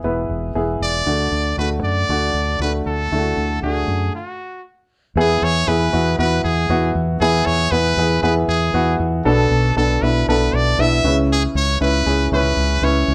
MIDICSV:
0, 0, Header, 1, 4, 480
1, 0, Start_track
1, 0, Tempo, 511509
1, 997, Time_signature, 4, 2, 24, 8
1, 12335, End_track
2, 0, Start_track
2, 0, Title_t, "Trumpet"
2, 0, Program_c, 0, 56
2, 775, Note_on_c, 0, 74, 96
2, 1449, Note_off_c, 0, 74, 0
2, 1490, Note_on_c, 0, 71, 80
2, 1595, Note_off_c, 0, 71, 0
2, 1729, Note_on_c, 0, 74, 93
2, 2406, Note_off_c, 0, 74, 0
2, 2454, Note_on_c, 0, 71, 77
2, 2558, Note_off_c, 0, 71, 0
2, 2690, Note_on_c, 0, 69, 83
2, 3367, Note_off_c, 0, 69, 0
2, 3402, Note_on_c, 0, 68, 75
2, 3847, Note_off_c, 0, 68, 0
2, 3893, Note_on_c, 0, 66, 59
2, 4334, Note_off_c, 0, 66, 0
2, 4876, Note_on_c, 0, 68, 91
2, 5101, Note_on_c, 0, 73, 104
2, 5115, Note_off_c, 0, 68, 0
2, 5326, Note_on_c, 0, 71, 96
2, 5340, Note_off_c, 0, 73, 0
2, 5799, Note_off_c, 0, 71, 0
2, 5805, Note_on_c, 0, 71, 95
2, 6026, Note_off_c, 0, 71, 0
2, 6046, Note_on_c, 0, 68, 81
2, 6490, Note_off_c, 0, 68, 0
2, 6762, Note_on_c, 0, 68, 100
2, 6998, Note_on_c, 0, 73, 99
2, 7013, Note_off_c, 0, 68, 0
2, 7239, Note_on_c, 0, 71, 104
2, 7253, Note_off_c, 0, 73, 0
2, 7713, Note_off_c, 0, 71, 0
2, 7718, Note_on_c, 0, 71, 87
2, 7827, Note_off_c, 0, 71, 0
2, 7962, Note_on_c, 0, 68, 84
2, 8407, Note_off_c, 0, 68, 0
2, 8681, Note_on_c, 0, 69, 95
2, 9127, Note_off_c, 0, 69, 0
2, 9171, Note_on_c, 0, 69, 92
2, 9405, Note_on_c, 0, 71, 90
2, 9419, Note_off_c, 0, 69, 0
2, 9642, Note_off_c, 0, 71, 0
2, 9654, Note_on_c, 0, 71, 92
2, 9902, Note_on_c, 0, 74, 98
2, 9917, Note_off_c, 0, 71, 0
2, 10138, Note_on_c, 0, 76, 112
2, 10152, Note_off_c, 0, 74, 0
2, 10488, Note_off_c, 0, 76, 0
2, 10623, Note_on_c, 0, 68, 96
2, 10726, Note_off_c, 0, 68, 0
2, 10854, Note_on_c, 0, 73, 101
2, 11070, Note_off_c, 0, 73, 0
2, 11091, Note_on_c, 0, 71, 97
2, 11532, Note_off_c, 0, 71, 0
2, 11578, Note_on_c, 0, 71, 93
2, 12051, Note_on_c, 0, 73, 93
2, 12065, Note_off_c, 0, 71, 0
2, 12335, Note_off_c, 0, 73, 0
2, 12335, End_track
3, 0, Start_track
3, 0, Title_t, "Grand piano"
3, 0, Program_c, 1, 0
3, 0, Control_c, 1, 64, 127
3, 0, Note_on_c, 1, 52, 60
3, 0, Note_on_c, 1, 59, 68
3, 0, Note_on_c, 1, 64, 61
3, 0, Note_on_c, 1, 68, 74
3, 37, Note_off_c, 1, 64, 0
3, 37, Note_on_c, 1, 64, 71
3, 40, Note_off_c, 1, 59, 0
3, 40, Note_on_c, 1, 59, 76
3, 40, Note_on_c, 1, 71, 83
3, 462, Note_off_c, 1, 64, 0
3, 463, Note_off_c, 1, 59, 0
3, 463, Note_off_c, 1, 71, 0
3, 519, Note_on_c, 1, 59, 71
3, 520, Note_off_c, 1, 68, 0
3, 520, Note_on_c, 1, 68, 79
3, 524, Note_on_c, 1, 64, 67
3, 943, Note_off_c, 1, 59, 0
3, 943, Note_off_c, 1, 68, 0
3, 946, Note_off_c, 1, 64, 0
3, 999, Note_on_c, 1, 57, 55
3, 1000, Note_on_c, 1, 66, 63
3, 1001, Note_on_c, 1, 50, 55
3, 1005, Note_on_c, 1, 62, 51
3, 1009, Control_c, 1, 64, 0
3, 1011, Note_off_c, 1, 52, 0
3, 1147, Control_c, 1, 64, 127
3, 1423, Note_off_c, 1, 57, 0
3, 1424, Note_off_c, 1, 66, 0
3, 1426, Note_off_c, 1, 62, 0
3, 1481, Note_on_c, 1, 57, 56
3, 1483, Note_on_c, 1, 62, 53
3, 1483, Note_on_c, 1, 66, 65
3, 1682, Note_off_c, 1, 50, 0
3, 1904, Note_off_c, 1, 57, 0
3, 1905, Note_off_c, 1, 62, 0
3, 1906, Note_off_c, 1, 66, 0
3, 1966, Note_on_c, 1, 57, 62
3, 1968, Note_on_c, 1, 62, 55
3, 1970, Note_on_c, 1, 66, 71
3, 2387, Note_off_c, 1, 57, 0
3, 2389, Note_off_c, 1, 62, 0
3, 2389, Note_off_c, 1, 66, 0
3, 2448, Note_on_c, 1, 57, 61
3, 2448, Note_on_c, 1, 66, 66
3, 2451, Note_on_c, 1, 62, 58
3, 2869, Note_off_c, 1, 57, 0
3, 2869, Note_off_c, 1, 66, 0
3, 2870, Note_off_c, 1, 62, 0
3, 2925, Note_on_c, 1, 64, 50
3, 2928, Note_on_c, 1, 50, 52
3, 2928, Note_on_c, 1, 57, 61
3, 2932, Note_on_c, 1, 62, 55
3, 2980, Note_off_c, 1, 64, 0
3, 2989, Note_on_c, 1, 66, 63
3, 3349, Note_off_c, 1, 57, 0
3, 3351, Note_off_c, 1, 62, 0
3, 3379, Note_off_c, 1, 66, 0
3, 3410, Note_on_c, 1, 57, 55
3, 3412, Note_on_c, 1, 62, 51
3, 3412, Note_on_c, 1, 66, 61
3, 3607, Note_off_c, 1, 50, 0
3, 3830, Note_off_c, 1, 57, 0
3, 3831, Note_off_c, 1, 62, 0
3, 3831, Note_off_c, 1, 66, 0
3, 3893, Control_c, 1, 64, 0
3, 4851, Note_on_c, 1, 59, 84
3, 4851, Note_on_c, 1, 64, 74
3, 4854, Note_on_c, 1, 52, 63
3, 4855, Note_on_c, 1, 68, 100
3, 4992, Control_c, 1, 64, 127
3, 5271, Note_off_c, 1, 59, 0
3, 5271, Note_off_c, 1, 64, 0
3, 5273, Note_off_c, 1, 68, 0
3, 5326, Note_on_c, 1, 64, 61
3, 5327, Note_on_c, 1, 68, 79
3, 5329, Note_on_c, 1, 59, 69
3, 5530, Note_off_c, 1, 52, 0
3, 5536, Note_off_c, 1, 64, 0
3, 5536, Note_off_c, 1, 68, 0
3, 5537, Note_off_c, 1, 59, 0
3, 5562, Note_on_c, 1, 59, 62
3, 5562, Note_on_c, 1, 66, 72
3, 5566, Note_on_c, 1, 64, 60
3, 5774, Note_off_c, 1, 59, 0
3, 5774, Note_off_c, 1, 66, 0
3, 5776, Note_off_c, 1, 64, 0
3, 5806, Note_on_c, 1, 64, 69
3, 5807, Note_on_c, 1, 59, 69
3, 5809, Note_on_c, 1, 66, 80
3, 6228, Note_off_c, 1, 59, 0
3, 6228, Note_off_c, 1, 64, 0
3, 6230, Note_off_c, 1, 66, 0
3, 6286, Note_on_c, 1, 64, 64
3, 6287, Note_on_c, 1, 59, 70
3, 6287, Note_on_c, 1, 66, 82
3, 6708, Note_off_c, 1, 64, 0
3, 6709, Note_off_c, 1, 59, 0
3, 6709, Note_off_c, 1, 66, 0
3, 6772, Note_on_c, 1, 59, 84
3, 6774, Note_on_c, 1, 52, 59
3, 6777, Note_on_c, 1, 64, 81
3, 6778, Note_on_c, 1, 68, 99
3, 7191, Note_off_c, 1, 59, 0
3, 7193, Note_off_c, 1, 64, 0
3, 7194, Note_off_c, 1, 68, 0
3, 7247, Note_on_c, 1, 59, 73
3, 7247, Note_on_c, 1, 64, 61
3, 7248, Note_on_c, 1, 71, 77
3, 7449, Note_off_c, 1, 52, 0
3, 7456, Note_off_c, 1, 59, 0
3, 7456, Note_off_c, 1, 64, 0
3, 7457, Note_off_c, 1, 71, 0
3, 7490, Note_on_c, 1, 59, 63
3, 7494, Note_on_c, 1, 64, 59
3, 7496, Note_on_c, 1, 68, 71
3, 7698, Note_off_c, 1, 59, 0
3, 7699, Note_off_c, 1, 64, 0
3, 7701, Note_off_c, 1, 68, 0
3, 7724, Note_on_c, 1, 68, 82
3, 7726, Note_on_c, 1, 64, 70
3, 7727, Note_on_c, 1, 59, 79
3, 8147, Note_off_c, 1, 68, 0
3, 8148, Note_off_c, 1, 64, 0
3, 8149, Note_off_c, 1, 59, 0
3, 8199, Note_on_c, 1, 64, 66
3, 8201, Note_on_c, 1, 59, 71
3, 8205, Note_on_c, 1, 66, 80
3, 8624, Note_off_c, 1, 64, 0
3, 8625, Note_off_c, 1, 59, 0
3, 8627, Note_off_c, 1, 66, 0
3, 8683, Note_on_c, 1, 69, 96
3, 8685, Note_on_c, 1, 62, 82
3, 8687, Note_on_c, 1, 47, 64
3, 8688, Note_on_c, 1, 59, 93
3, 8693, Control_c, 1, 64, 0
3, 8829, Control_c, 1, 64, 127
3, 9106, Note_off_c, 1, 69, 0
3, 9107, Note_off_c, 1, 62, 0
3, 9109, Note_off_c, 1, 59, 0
3, 9164, Note_on_c, 1, 59, 66
3, 9164, Note_on_c, 1, 69, 74
3, 9170, Note_on_c, 1, 62, 65
3, 9366, Note_off_c, 1, 47, 0
3, 9374, Note_off_c, 1, 59, 0
3, 9374, Note_off_c, 1, 69, 0
3, 9377, Note_off_c, 1, 62, 0
3, 9407, Note_on_c, 1, 62, 62
3, 9407, Note_on_c, 1, 64, 71
3, 9410, Note_on_c, 1, 59, 66
3, 9616, Note_off_c, 1, 62, 0
3, 9616, Note_off_c, 1, 64, 0
3, 9617, Note_off_c, 1, 59, 0
3, 9652, Note_on_c, 1, 62, 68
3, 9653, Note_on_c, 1, 59, 74
3, 9654, Note_on_c, 1, 69, 87
3, 10071, Note_off_c, 1, 59, 0
3, 10071, Note_off_c, 1, 62, 0
3, 10072, Note_off_c, 1, 69, 0
3, 10126, Note_on_c, 1, 59, 72
3, 10126, Note_on_c, 1, 62, 64
3, 10129, Note_on_c, 1, 64, 83
3, 10353, Note_off_c, 1, 64, 0
3, 10363, Note_off_c, 1, 59, 0
3, 10363, Note_off_c, 1, 62, 0
3, 10363, Note_on_c, 1, 61, 69
3, 10366, Note_on_c, 1, 71, 82
3, 10367, Note_on_c, 1, 49, 61
3, 10367, Note_on_c, 1, 64, 67
3, 10372, Control_c, 1, 64, 0
3, 10521, Control_c, 1, 64, 127
3, 10998, Note_off_c, 1, 61, 0
3, 11000, Note_off_c, 1, 71, 0
3, 11001, Note_off_c, 1, 64, 0
3, 11045, Note_off_c, 1, 49, 0
3, 11079, Note_on_c, 1, 61, 65
3, 11081, Note_on_c, 1, 64, 67
3, 11082, Note_on_c, 1, 71, 75
3, 11291, Note_off_c, 1, 61, 0
3, 11293, Note_off_c, 1, 64, 0
3, 11293, Note_off_c, 1, 71, 0
3, 11322, Note_on_c, 1, 64, 56
3, 11322, Note_on_c, 1, 68, 66
3, 11325, Note_on_c, 1, 61, 67
3, 11533, Note_off_c, 1, 64, 0
3, 11533, Note_off_c, 1, 68, 0
3, 11534, Note_off_c, 1, 61, 0
3, 11566, Note_on_c, 1, 64, 67
3, 11567, Note_on_c, 1, 61, 76
3, 11567, Note_on_c, 1, 71, 83
3, 11987, Note_off_c, 1, 64, 0
3, 11988, Note_off_c, 1, 61, 0
3, 11988, Note_off_c, 1, 71, 0
3, 12035, Note_on_c, 1, 71, 82
3, 12039, Note_on_c, 1, 61, 74
3, 12040, Note_on_c, 1, 64, 67
3, 12335, Note_off_c, 1, 61, 0
3, 12335, Note_off_c, 1, 64, 0
3, 12335, Note_off_c, 1, 71, 0
3, 12335, End_track
4, 0, Start_track
4, 0, Title_t, "Fingered electric bass"
4, 0, Program_c, 2, 33
4, 30, Note_on_c, 2, 28, 74
4, 229, Note_off_c, 2, 28, 0
4, 274, Note_on_c, 2, 28, 82
4, 472, Note_off_c, 2, 28, 0
4, 511, Note_on_c, 2, 28, 76
4, 710, Note_off_c, 2, 28, 0
4, 752, Note_on_c, 2, 28, 83
4, 951, Note_off_c, 2, 28, 0
4, 995, Note_on_c, 2, 38, 81
4, 1193, Note_off_c, 2, 38, 0
4, 1234, Note_on_c, 2, 38, 82
4, 1432, Note_off_c, 2, 38, 0
4, 1476, Note_on_c, 2, 38, 84
4, 1674, Note_off_c, 2, 38, 0
4, 1714, Note_on_c, 2, 42, 71
4, 1913, Note_off_c, 2, 42, 0
4, 1962, Note_on_c, 2, 38, 79
4, 2157, Note_off_c, 2, 38, 0
4, 2192, Note_on_c, 2, 38, 82
4, 2392, Note_off_c, 2, 38, 0
4, 2433, Note_on_c, 2, 38, 85
4, 2632, Note_off_c, 2, 38, 0
4, 2683, Note_on_c, 2, 38, 94
4, 2878, Note_off_c, 2, 38, 0
4, 2923, Note_on_c, 2, 38, 76
4, 3118, Note_off_c, 2, 38, 0
4, 3162, Note_on_c, 2, 38, 83
4, 3358, Note_off_c, 2, 38, 0
4, 3399, Note_on_c, 2, 38, 80
4, 3596, Note_off_c, 2, 38, 0
4, 3639, Note_on_c, 2, 42, 76
4, 3836, Note_off_c, 2, 42, 0
4, 4837, Note_on_c, 2, 40, 89
4, 5035, Note_off_c, 2, 40, 0
4, 5085, Note_on_c, 2, 40, 96
4, 5280, Note_off_c, 2, 40, 0
4, 5326, Note_on_c, 2, 40, 95
4, 5521, Note_off_c, 2, 40, 0
4, 5571, Note_on_c, 2, 40, 92
4, 5763, Note_off_c, 2, 40, 0
4, 5806, Note_on_c, 2, 40, 92
4, 6000, Note_off_c, 2, 40, 0
4, 6047, Note_on_c, 2, 40, 89
4, 6241, Note_off_c, 2, 40, 0
4, 6281, Note_on_c, 2, 40, 95
4, 6477, Note_off_c, 2, 40, 0
4, 6524, Note_on_c, 2, 40, 99
4, 6719, Note_off_c, 2, 40, 0
4, 6761, Note_on_c, 2, 40, 100
4, 6957, Note_off_c, 2, 40, 0
4, 7006, Note_on_c, 2, 40, 83
4, 7201, Note_off_c, 2, 40, 0
4, 7241, Note_on_c, 2, 40, 96
4, 7437, Note_off_c, 2, 40, 0
4, 7479, Note_on_c, 2, 40, 98
4, 7676, Note_off_c, 2, 40, 0
4, 7720, Note_on_c, 2, 40, 88
4, 7917, Note_off_c, 2, 40, 0
4, 7959, Note_on_c, 2, 40, 93
4, 8156, Note_off_c, 2, 40, 0
4, 8199, Note_on_c, 2, 40, 92
4, 8396, Note_off_c, 2, 40, 0
4, 8441, Note_on_c, 2, 40, 101
4, 8637, Note_off_c, 2, 40, 0
4, 8682, Note_on_c, 2, 35, 95
4, 8878, Note_off_c, 2, 35, 0
4, 8919, Note_on_c, 2, 35, 94
4, 9116, Note_off_c, 2, 35, 0
4, 9164, Note_on_c, 2, 35, 103
4, 9359, Note_off_c, 2, 35, 0
4, 9401, Note_on_c, 2, 35, 98
4, 9597, Note_off_c, 2, 35, 0
4, 9643, Note_on_c, 2, 35, 92
4, 9838, Note_off_c, 2, 35, 0
4, 9881, Note_on_c, 2, 35, 90
4, 10077, Note_off_c, 2, 35, 0
4, 10120, Note_on_c, 2, 35, 95
4, 10316, Note_off_c, 2, 35, 0
4, 10359, Note_on_c, 2, 37, 111
4, 10753, Note_off_c, 2, 37, 0
4, 10838, Note_on_c, 2, 37, 99
4, 11035, Note_off_c, 2, 37, 0
4, 11080, Note_on_c, 2, 37, 97
4, 11277, Note_off_c, 2, 37, 0
4, 11317, Note_on_c, 2, 37, 92
4, 11515, Note_off_c, 2, 37, 0
4, 11558, Note_on_c, 2, 37, 95
4, 11755, Note_off_c, 2, 37, 0
4, 11791, Note_on_c, 2, 37, 91
4, 11991, Note_off_c, 2, 37, 0
4, 12025, Note_on_c, 2, 37, 90
4, 12228, Note_off_c, 2, 37, 0
4, 12274, Note_on_c, 2, 37, 105
4, 12335, Note_off_c, 2, 37, 0
4, 12335, End_track
0, 0, End_of_file